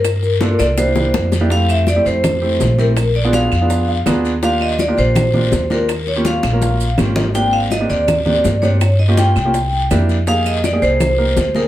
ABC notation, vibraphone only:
X:1
M:4/4
L:1/8
Q:1/4=164
K:Fdor
V:1 name="Vibraphone"
B3 d c3 z | f =e d c4 B- | B d f4 z2 | f e d c4 B- |
B _d f4 z2 | g f e d4 _d- | _d e g4 z2 | f e d c4 B |]